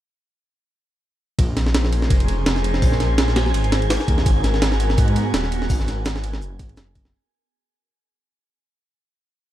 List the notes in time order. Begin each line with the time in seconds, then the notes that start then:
1.39 A#1 C#4 G#4 A#4 C5 G#5, kick, ride
1.57 snare, ride
1.66 snare
1.75 snare, ride
1.84 snare
1.93 ride
2.02 snare
2.10 F1, kick, ride
2.20 ride
2.28 ride
2.46 F1, snare, ride
2.56 snare
2.64 ride
2.74 snare
2.82 A#1, kick, open hi-hat
2.92 snare
3.00 snare, ride
3.18 snare, ride
3.28 snare
3.36 snare, ride
3.46 snare
3.54 G#1, ride
3.64 ride
3.72 snare, ride
3.82 ride
3.90 snare, ride
4.00 snare
4.08 D#2, kick, ride
4.18 snare
4.26 G#1 B3 F#4 A#4, kick, ride, shaker
4.44 snare, ride, shaker
4.54 snare
4.62 snare, ride, shaker
4.72 snare
4.79 snare, ride, shaker
4.89 snare, closed hi-hat
4.98 G#2, kick, ride, shaker
5.08 ride
5.16 ride, shaker
5.34 D#1, snare, ride, shaker
5.44 snare
5.52 ride, shaker
5.62 snare
5.69 G#1, kick, open hi-hat, shaker
5.79 snare
5.87 snare, ride, shaker
6.05 snare, ride, shaker
6.16 snare
6.23 ride, shaker
6.33 snare
6.42 F#1, shaker
6.59 G#1, kick, ride, shaker
6.69 ride
6.77 F#1, snare, ride, shaker
6.95 kick, ride, shaker
7.05 snare